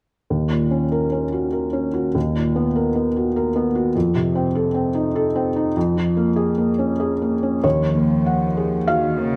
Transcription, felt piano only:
0, 0, Header, 1, 2, 480
1, 0, Start_track
1, 0, Key_signature, -6, "minor"
1, 0, Tempo, 618557
1, 229, Time_signature, 3, 2, 24, 8
1, 1667, Tempo, 600601
1, 4547, Tempo, 623053
1, 7328, End_track
2, 0, Start_track
2, 0, Title_t, "Felt piano"
2, 0, Program_c, 0, 0
2, 235, Note_on_c, 0, 39, 31
2, 362, Control_c, 0, 64, 127
2, 388, Note_on_c, 0, 46, 24
2, 549, Note_on_c, 0, 61, 25
2, 645, Note_off_c, 0, 46, 0
2, 712, Note_on_c, 0, 70, 29
2, 805, Note_off_c, 0, 61, 0
2, 868, Note_on_c, 0, 61, 26
2, 966, Note_off_c, 0, 70, 0
2, 1027, Note_on_c, 0, 66, 27
2, 1124, Note_off_c, 0, 61, 0
2, 1183, Note_on_c, 0, 70, 26
2, 1284, Note_off_c, 0, 66, 0
2, 1341, Note_on_c, 0, 61, 27
2, 1442, Note_off_c, 0, 70, 0
2, 1502, Note_on_c, 0, 66, 29
2, 1600, Note_off_c, 0, 61, 0
2, 1640, Note_off_c, 0, 39, 0
2, 1665, Note_off_c, 0, 66, 0
2, 1666, Note_on_c, 0, 39, 37
2, 1684, Control_c, 0, 64, 0
2, 1820, Control_c, 0, 64, 127
2, 1829, Note_on_c, 0, 46, 23
2, 1994, Note_on_c, 0, 59, 31
2, 2088, Note_off_c, 0, 46, 0
2, 2153, Note_on_c, 0, 70, 31
2, 2249, Note_off_c, 0, 59, 0
2, 2312, Note_on_c, 0, 59, 26
2, 2407, Note_off_c, 0, 70, 0
2, 2478, Note_on_c, 0, 66, 26
2, 2566, Note_off_c, 0, 59, 0
2, 2638, Note_on_c, 0, 70, 31
2, 2728, Note_off_c, 0, 66, 0
2, 2793, Note_on_c, 0, 59, 31
2, 2887, Note_off_c, 0, 70, 0
2, 2948, Note_on_c, 0, 66, 34
2, 3044, Note_off_c, 0, 59, 0
2, 3072, Note_off_c, 0, 39, 0
2, 3106, Note_off_c, 0, 66, 0
2, 3110, Note_on_c, 0, 41, 38
2, 3118, Control_c, 0, 64, 0
2, 3246, Control_c, 0, 64, 127
2, 3267, Note_on_c, 0, 48, 30
2, 3429, Note_on_c, 0, 60, 35
2, 3522, Note_off_c, 0, 48, 0
2, 3588, Note_on_c, 0, 69, 38
2, 3684, Note_off_c, 0, 60, 0
2, 3741, Note_on_c, 0, 60, 31
2, 3844, Note_off_c, 0, 69, 0
2, 3904, Note_on_c, 0, 63, 32
2, 4001, Note_off_c, 0, 60, 0
2, 4069, Note_on_c, 0, 69, 43
2, 4162, Note_off_c, 0, 63, 0
2, 4229, Note_on_c, 0, 60, 42
2, 4324, Note_off_c, 0, 69, 0
2, 4394, Note_on_c, 0, 63, 39
2, 4485, Note_off_c, 0, 60, 0
2, 4520, Note_off_c, 0, 41, 0
2, 4552, Note_off_c, 0, 63, 0
2, 4557, Note_on_c, 0, 41, 46
2, 4563, Control_c, 0, 64, 0
2, 4705, Control_c, 0, 64, 127
2, 4709, Note_on_c, 0, 53, 35
2, 4868, Note_on_c, 0, 58, 36
2, 4960, Note_off_c, 0, 53, 0
2, 5017, Note_on_c, 0, 68, 41
2, 5119, Note_off_c, 0, 58, 0
2, 5182, Note_on_c, 0, 58, 36
2, 5276, Note_off_c, 0, 68, 0
2, 5343, Note_on_c, 0, 61, 31
2, 5441, Note_off_c, 0, 58, 0
2, 5507, Note_on_c, 0, 68, 36
2, 5606, Note_off_c, 0, 61, 0
2, 5676, Note_on_c, 0, 58, 31
2, 5774, Note_off_c, 0, 68, 0
2, 5838, Note_on_c, 0, 61, 28
2, 5939, Note_off_c, 0, 58, 0
2, 5975, Note_off_c, 0, 41, 0
2, 5998, Note_on_c, 0, 39, 42
2, 5998, Note_on_c, 0, 73, 59
2, 6001, Note_off_c, 0, 61, 0
2, 6017, Control_c, 0, 64, 0
2, 6132, Control_c, 0, 64, 127
2, 6238, Note_on_c, 0, 58, 30
2, 6481, Note_on_c, 0, 78, 35
2, 6621, Note_off_c, 0, 58, 0
2, 6718, Note_on_c, 0, 68, 27
2, 6860, Note_off_c, 0, 78, 0
2, 6922, Note_off_c, 0, 73, 0
2, 6953, Note_on_c, 0, 77, 76
2, 6955, Note_off_c, 0, 68, 0
2, 6959, Note_on_c, 0, 66, 36
2, 7194, Note_on_c, 0, 58, 35
2, 7328, Note_off_c, 0, 39, 0
2, 7328, Note_off_c, 0, 58, 0
2, 7328, Note_off_c, 0, 66, 0
2, 7328, Note_off_c, 0, 77, 0
2, 7328, End_track
0, 0, End_of_file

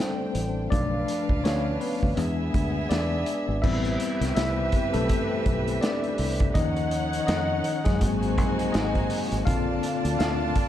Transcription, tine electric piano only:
0, 0, Header, 1, 2, 480
1, 0, Start_track
1, 0, Tempo, 729040
1, 475, Time_signature, 4, 2, 24, 8
1, 7034, End_track
2, 0, Start_track
2, 0, Title_t, "Tine electric piano"
2, 0, Program_c, 0, 4
2, 0, Control_c, 0, 64, 127
2, 0, Note_on_c, 0, 55, 48
2, 0, Note_on_c, 0, 57, 58
2, 0, Note_on_c, 0, 60, 72
2, 0, Note_on_c, 0, 62, 51
2, 0, Note_on_c, 0, 69, 80
2, 0, Note_on_c, 0, 72, 92
2, 0, Note_on_c, 0, 74, 94
2, 204, Note_off_c, 0, 69, 0
2, 211, Note_off_c, 0, 57, 0
2, 464, Note_off_c, 0, 74, 0
2, 464, Note_on_c, 0, 74, 107
2, 469, Note_on_c, 0, 53, 55
2, 471, Note_on_c, 0, 57, 52
2, 475, Note_off_c, 0, 62, 0
2, 475, Note_on_c, 0, 62, 81
2, 485, Control_c, 0, 64, 0
2, 488, Note_off_c, 0, 55, 0
2, 489, Note_off_c, 0, 72, 0
2, 491, Note_off_c, 0, 60, 0
2, 613, Control_c, 0, 64, 127
2, 931, Note_off_c, 0, 62, 0
2, 947, Note_on_c, 0, 73, 95
2, 960, Note_on_c, 0, 61, 73
2, 965, Note_off_c, 0, 74, 0
2, 1167, Note_off_c, 0, 53, 0
2, 1168, Note_off_c, 0, 57, 0
2, 1182, Note_off_c, 0, 61, 0
2, 1189, Note_on_c, 0, 71, 83
2, 1199, Note_off_c, 0, 73, 0
2, 1199, Note_on_c, 0, 59, 66
2, 1422, Note_off_c, 0, 59, 0
2, 1425, Note_on_c, 0, 56, 58
2, 1429, Note_on_c, 0, 59, 51
2, 1434, Note_on_c, 0, 62, 61
2, 1446, Control_c, 0, 64, 0
2, 1556, Control_c, 0, 64, 127
2, 1904, Note_on_c, 0, 74, 94
2, 1910, Note_off_c, 0, 62, 0
2, 1918, Note_on_c, 0, 62, 74
2, 2125, Note_off_c, 0, 56, 0
2, 2127, Note_off_c, 0, 59, 0
2, 2127, Note_off_c, 0, 71, 0
2, 2371, Note_off_c, 0, 62, 0
2, 2383, Note_on_c, 0, 76, 109
2, 2389, Note_on_c, 0, 60, 56
2, 2393, Note_on_c, 0, 55, 51
2, 2398, Note_on_c, 0, 59, 59
2, 2398, Note_on_c, 0, 64, 77
2, 2405, Control_c, 0, 64, 0
2, 2406, Note_off_c, 0, 74, 0
2, 2526, Control_c, 0, 64, 127
2, 2852, Note_off_c, 0, 64, 0
2, 2858, Note_off_c, 0, 76, 0
2, 2866, Note_on_c, 0, 76, 97
2, 2881, Note_on_c, 0, 64, 72
2, 3232, Note_off_c, 0, 64, 0
2, 3249, Note_on_c, 0, 69, 93
2, 3262, Note_off_c, 0, 76, 0
2, 3264, Note_on_c, 0, 57, 74
2, 3706, Note_off_c, 0, 69, 0
2, 3714, Note_off_c, 0, 57, 0
2, 3827, Note_on_c, 0, 74, 89
2, 3843, Note_on_c, 0, 62, 71
2, 4286, Note_off_c, 0, 60, 0
2, 4288, Note_off_c, 0, 55, 0
2, 4291, Note_off_c, 0, 59, 0
2, 4293, Note_off_c, 0, 62, 0
2, 4308, Note_on_c, 0, 75, 98
2, 4314, Note_on_c, 0, 53, 53
2, 4319, Note_on_c, 0, 51, 54
2, 4323, Note_on_c, 0, 61, 67
2, 4324, Control_c, 0, 64, 0
2, 4325, Note_on_c, 0, 63, 82
2, 4326, Note_off_c, 0, 74, 0
2, 4426, Control_c, 0, 64, 127
2, 4765, Note_off_c, 0, 75, 0
2, 4774, Note_off_c, 0, 63, 0
2, 4786, Note_on_c, 0, 75, 96
2, 4799, Note_on_c, 0, 63, 76
2, 5008, Note_off_c, 0, 53, 0
2, 5010, Note_off_c, 0, 51, 0
2, 5013, Note_off_c, 0, 61, 0
2, 5150, Note_off_c, 0, 63, 0
2, 5166, Note_on_c, 0, 68, 98
2, 5179, Note_on_c, 0, 56, 77
2, 5181, Note_off_c, 0, 75, 0
2, 5272, Note_on_c, 0, 54, 61
2, 5275, Note_on_c, 0, 58, 52
2, 5279, Note_on_c, 0, 60, 61
2, 5283, Control_c, 0, 64, 0
2, 5415, Control_c, 0, 64, 127
2, 5623, Note_off_c, 0, 68, 0
2, 5630, Note_off_c, 0, 56, 0
2, 5744, Note_on_c, 0, 75, 101
2, 5759, Note_on_c, 0, 63, 75
2, 5966, Note_off_c, 0, 54, 0
2, 5968, Note_off_c, 0, 58, 0
2, 5970, Note_off_c, 0, 60, 0
2, 6210, Note_off_c, 0, 63, 0
2, 6225, Note_on_c, 0, 77, 112
2, 6230, Note_on_c, 0, 50, 57
2, 6232, Note_on_c, 0, 69, 52
2, 6238, Note_on_c, 0, 60, 68
2, 6239, Note_on_c, 0, 65, 80
2, 6242, Control_c, 0, 64, 0
2, 6243, Note_off_c, 0, 75, 0
2, 6356, Control_c, 0, 64, 127
2, 6683, Note_off_c, 0, 77, 0
2, 6690, Note_off_c, 0, 65, 0
2, 6708, Note_on_c, 0, 77, 101
2, 6721, Note_on_c, 0, 65, 86
2, 7034, Note_off_c, 0, 50, 0
2, 7034, Note_off_c, 0, 60, 0
2, 7034, Note_off_c, 0, 65, 0
2, 7034, Note_off_c, 0, 69, 0
2, 7034, Note_off_c, 0, 77, 0
2, 7034, End_track
0, 0, End_of_file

